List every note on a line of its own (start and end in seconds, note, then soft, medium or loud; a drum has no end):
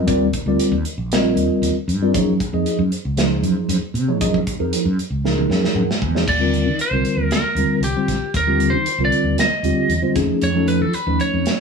0.07 0.31 D#2 medium
0.07 0.25 G3 loud
0.07 0.25 C4 loud
0.07 0.26 F4 medium
0.07 0.26 A#4 medium
0.07 0.26 D5 loud
0.07 kick loud
0.07 closed hi-hat medium
0.33 kick medium
0.33 closed hi-hat medium
0.46 0.58 D2 medium
0.46 0.74 G3 medium
0.46 0.74 C4 medium
0.46 0.74 F4 medium
0.46 0.74 A#4 medium
0.46 0.74 D5 loud
0.60 closed hi-hat medium
0.72 0.83 D#2 loud
0.85 0.92 A#4 soft
0.85 0.92 D#5 soft
0.85 closed hi-hat medium
0.98 1.32 A#1 medium
1.12 1.75 G3 medium
1.12 1.75 C4 medium
1.12 1.75 F4 medium
1.12 1.75 A#4 medium
1.12 1.75 D#5 loud
1.12 snare loud
1.12 closed hi-hat medium
1.36 1.48 D#2 medium
1.36 closed hi-hat medium
1.62 1.74 D#2 medium
1.62 closed hi-hat medium
1.75 muted fretless electric bass stroke soft
1.88 2.14 G2 loud
1.88 closed hi-hat medium
2.02 2.11 G3 medium
2.02 2.11 C4 medium
2.02 2.11 F4 medium
2.02 2.11 A#4 medium
2.02 2.11 D5 medium
2.14 2.38 F#2 loud
2.14 2.32 F3 loud
2.14 2.32 A#3 loud
2.14 2.32 D#4 loud
2.14 2.32 G#4 medium
2.14 2.32 C#5 loud
2.14 kick loud
2.14 closed hi-hat medium
2.40 kick medium
2.40 closed hi-hat medium
2.53 2.64 F2 medium
2.53 2.80 F3 medium
2.53 2.80 A#3 medium
2.53 2.80 D#4 medium
2.53 2.80 G#4 medium
2.53 2.80 D#5 medium
2.66 closed hi-hat medium
2.79 2.90 F#2 loud
2.92 2.98 G#4 soft
2.92 2.98 C5 soft
2.92 closed hi-hat medium
3.05 3.40 C#2 medium
3.17 3.80 F3 medium
3.17 3.80 A#3 medium
3.17 3.80 D#4 medium
3.17 3.80 G#4 medium
3.17 3.81 C5 loud
3.17 snare loud
3.17 closed hi-hat medium
3.42 3.55 F#2 medium
3.42 closed hi-hat medium
3.69 3.81 F#2 loud
3.69 closed hi-hat medium
3.82 muted fretless electric bass stroke soft
3.94 4.21 C3 medium
3.94 closed hi-hat medium
4.08 4.17 F3 medium
4.08 4.17 A#3 medium
4.08 4.17 D#4 medium
4.08 4.17 G#4 medium
4.08 4.17 C#5 medium
4.21 4.44 F#2 medium
4.21 4.39 F3 medium
4.21 4.39 A#3 medium
4.21 4.39 D#4 medium
4.21 4.39 G#4 medium
4.21 4.39 D#5 loud
4.21 kick loud
4.21 closed hi-hat medium
4.34 kick medium
4.47 kick medium
4.47 closed hi-hat medium
4.60 4.71 F2 medium
4.60 4.87 F3 medium
4.60 4.87 A#3 medium
4.60 4.87 D#4 medium
4.60 4.87 G#4 medium
4.60 4.87 A#4 medium
4.73 closed hi-hat medium
4.85 4.97 F#2 loud
4.98 5.05 G#4 soft
4.98 5.05 C#5 soft
4.98 closed hi-hat medium
5.10 5.45 C#2 medium
5.24 5.88 F3 medium
5.24 5.87 A#3 medium
5.24 5.87 D#4 medium
5.24 5.88 G#4 medium
5.24 5.88 A#4 loud
5.24 snare medium
5.38 high tom soft
5.50 5.62 F#2 medium
5.50 5.74 C#5 medium
5.50 snare medium
5.64 snare medium
5.75 5.87 F#2 medium
5.75 6.00 F#5 medium
5.75 mid tom medium
5.88 muted fretless electric bass stroke soft
5.88 snare medium
6.02 6.25 E2 loud
6.02 6.26 G#5 medium
6.02 kick medium
6.15 6.24 F3 medium
6.15 6.24 A#3 medium
6.15 6.24 D#4 medium
6.15 6.24 G#4 medium
6.15 6.24 C#5 medium
6.15 snare medium
6.27 6.67 D#2 medium
6.27 6.81 D5 medium
6.27 kick loud
6.27 crash medium
6.40 6.67 D3 medium
6.40 6.67 G3 medium
6.40 6.68 C4 medium
6.40 6.67 F4 medium
6.40 6.68 A#4 medium
6.54 closed hi-hat soft
6.66 6.78 D#3 medium
6.79 6.86 F4 soft
6.79 6.86 A#4 soft
6.79 7.23 C5 medium
6.79 muted fretless electric bass stroke soft
6.79 closed hi-hat medium
6.91 7.03 C2 loud
6.91 7.37 D3 medium
6.91 7.38 G3 medium
6.91 7.37 C4 medium
6.91 7.38 F4 medium
6.91 7.38 A#4 medium
7.05 closed hi-hat medium
7.17 7.29 D#2 medium
7.23 7.32 A#4 medium
7.31 7.80 A#4 medium
7.31 snare loud
7.31 closed hi-hat medium
7.43 muted fretless electric bass stroke soft
7.55 7.68 D#2 medium
7.55 7.84 D3 medium
7.55 7.84 G3 medium
7.55 7.84 C4 medium
7.55 7.84 F4 medium
7.55 7.84 A#4 medium
7.55 closed hi-hat medium
7.80 7.93 C2 medium
7.80 8.36 G4 medium
7.80 closed hi-hat medium
7.96 8.14 D3 medium
7.96 8.14 G3 medium
7.96 8.14 C4 medium
7.96 8.14 F4 medium
7.96 8.14 C5 medium
8.08 8.20 A#1 medium
8.08 kick medium
8.08 snare soft
8.08 closed hi-hat medium
8.22 8.28 F4 soft
8.22 8.28 A#4 soft
8.34 8.74 D#2 medium
8.34 8.71 A#4 medium
8.34 kick loud
8.34 closed hi-hat medium
8.47 8.74 D3 medium
8.47 8.74 G3 medium
8.47 8.75 C4 medium
8.47 8.75 F4 medium
8.47 8.75 G4 medium
8.60 closed hi-hat medium
8.70 8.84 D#3 medium
8.70 9.02 C5 medium
8.85 8.92 F4 soft
8.85 8.93 A#4 soft
8.85 muted fretless electric bass stroke soft
8.85 closed hi-hat medium
8.98 9.10 C2 medium
8.98 9.44 D3 medium
8.98 9.45 G3 medium
8.98 9.45 C4 medium
8.98 9.45 F4 medium
8.98 9.45 A#4 medium
9.05 9.37 D5 medium
9.12 closed hi-hat medium
9.24 9.36 D#2 medium
9.38 10.13 D#5 medium
9.38 snare loud
9.38 closed hi-hat medium
9.50 muted fretless electric bass stroke soft
9.63 9.75 D#2 medium
9.63 9.91 D3 medium
9.63 9.91 G3 medium
9.63 9.91 C4 medium
9.63 9.91 F4 medium
9.63 9.91 G4 medium
9.63 closed hi-hat medium
9.89 10.01 E2 medium
9.89 closed hi-hat medium
10.02 10.16 D3 medium
10.02 10.15 G3 medium
10.02 10.15 C4 medium
10.02 10.15 F4 medium
10.02 10.16 C5 medium
10.15 10.28 F2 medium
10.15 10.47 F3 medium
10.15 10.47 A3 medium
10.15 10.47 C#4 medium
10.15 10.47 D#4 medium
10.15 10.47 G#4 medium
10.15 kick medium
10.15 snare soft
10.15 closed hi-hat medium
10.42 10.83 F2 medium
10.42 10.69 C#5 medium
10.42 closed hi-hat medium
10.55 10.82 F3 loud
10.55 10.82 A3 medium
10.55 10.82 C#4 medium
10.55 10.82 D#4 medium
10.55 10.82 A4 loud
10.68 10.82 B4 medium
10.68 closed hi-hat medium
10.81 10.93 F3 medium
10.81 10.94 A4 medium
10.93 11.00 D#4 soft
10.93 11.01 A4 soft
10.93 11.21 B4 medium
10.93 muted fretless electric bass stroke soft
10.93 closed hi-hat medium
11.07 11.18 D#2 medium
11.07 11.52 F3 medium
11.07 11.52 A3 medium
11.07 11.52 C#4 medium
11.07 11.52 D#4 medium
11.07 11.52 B4 medium
11.20 11.60 C#5 medium
11.20 closed hi-hat soft
11.33 11.45 F2 medium
11.46 snare medium
11.46 closed hi-hat medium